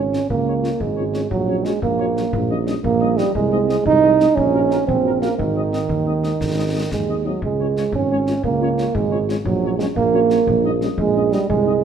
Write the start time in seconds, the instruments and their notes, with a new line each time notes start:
Already playing: tuba G#1, euphonium C#4
0.12 french horn section G#3 C#4 F4, trumpet section C#5, snare
0.29 tuba C#2, euphonium A#3, concert bass drum
0.46 french horn section G#3 C#4 F4, trumpet section C#5
0.63 french horn section G#3 C#4 F4, trumpet section C#5, snare
0.80 tuba G#1, euphonium G#3, concert bass drum
0.96 french horn section G#3 C#4 F4, trumpet section C#5
1.14 french horn section G#3 C#4 F4, trumpet section C#5, snare
1.30 tuba A#1, euphonium F#3, concert bass drum
1.47 french horn section F#3 C#4 F#4, trumpet section C#5
1.64 french horn section F#3 C#4 F#4, euphonium G#3, trumpet section C#5, snare
1.82 tuba A#1, euphonium A#3, concert bass drum
1.99 french horn section F#3 C#4 F#4, trumpet section C#5
2.16 french horn section F#3 C#4 F#4, trumpet section C#5, snare
2.33 tuba A#1, concert bass drum
2.50 french horn section G3 C#4 D#4, trumpet section D#5
2.66 french horn section G3 C#4 D#4, trumpet section D#5, snare
2.84 tuba A#1, euphonium A#3, concert bass drum
3.00 french horn section G3 C#4 D#4, trumpet section D#5
3.17 euphonium G3, french horn section G3 C#4 D#4, trumpet section D#5, snare
3.35 tuba C2, euphonium G#3, concert bass drum
3.51 french horn section G#3 C4 D#4, trumpet section D#5
3.69 french horn section G#3 C4 D#4, trumpet section D#5, snare
3.86 tuba C2, euphonium D#4, concert bass drum
4.03 french horn section G#3 C4 D#4, trumpet section D#5
4.20 french horn section G#3 C4 D#4, trumpet section D#5, snare
4.35 tuba A#1, euphonium C#4, concert bass drum
4.54 french horn section A#3 C#4 F#4, trumpet section A#4
4.71 french horn section A#3 C#4 F#4, trumpet section A#4, snare
4.87 tuba A#1, euphonium C4, concert bass drum
5.04 french horn section A#3 C#4 F#4, trumpet section A#4
5.21 french horn section A#3 C#4 F#4, euphonium A#3, trumpet section A#4, snare
5.38 tuba G#1, euphonium D#3, concert bass drum
5.54 french horn section G#3 C4 D#4, trumpet section D#5
5.72 french horn section G#3 C4 D#4, trumpet section D#5, snare
5.89 tuba D#2, concert bass drum
6.06 french horn section G#3 C4 D#4, trumpet section D#5
6.22 french horn section G#3 C4 D#4, trumpet section D#5, snare
6.41 tuba G#1, concert bass drum, snare
6.56 french horn section G#3 C4 D#4, trumpet section D#5
6.74 french horn section G#3 C4 D#4, trumpet section D#5
6.92 tuba D#2, euphonium G#3, concert bass drum, snare
7.08 french horn section G#3 C4 D#4, trumpet section D#5
7.25 euphonium F#3, french horn section G#3 C4 D#4, trumpet section D#5
7.42 tuba C#2, euphonium G#3, concert bass drum
7.60 french horn section G#3 C#4 F4, trumpet section C#5
7.76 french horn section G#3 C#4 F4, trumpet section C#5, snare
7.92 tuba G#1, euphonium C#4, concert bass drum
8.10 french horn section G#3 C#4 F4, trumpet section C#5
8.27 french horn section G#3 C#4 F4, trumpet section C#5, snare
8.43 tuba C#2, euphonium A#3, concert bass drum
8.61 french horn section G#3 C#4 F4, trumpet section C#5
8.78 french horn section G#3 C#4 F4, trumpet section C#5, snare
8.95 tuba G#1, euphonium G#3, concert bass drum
9.10 french horn section G#3 C#4 F4, trumpet section C#5
9.28 french horn section G#3 C#4 F4, trumpet section C#5, snare
9.45 tuba A#1, euphonium F#3, concert bass drum
9.62 french horn section F#3 C#4 F#4, trumpet section C#5
9.79 french horn section F#3 C#4 F#4, euphonium G#3, trumpet section C#5, snare
9.96 tuba A#1, euphonium A#3, concert bass drum
10.13 french horn section F#3 C#4 F#4, trumpet section C#5
10.29 french horn section F#3 C#4 F#4, trumpet section C#5, snare
10.47 tuba A#1, concert bass drum
10.64 french horn section G3 C#4 D#4, trumpet section D#5
10.80 french horn section G3 C#4 D#4, trumpet section D#5, snare
10.96 tuba A#1, euphonium G#3, concert bass drum
11.15 french horn section G3 C#4 D#4, trumpet section D#5
11.30 french horn section G3 C#4 D#4, euphonium G3, trumpet section D#5, snare
11.49 tuba C2, euphonium G#3, concert bass drum
11.65 french horn section G#3 C4 D#4, trumpet section D#5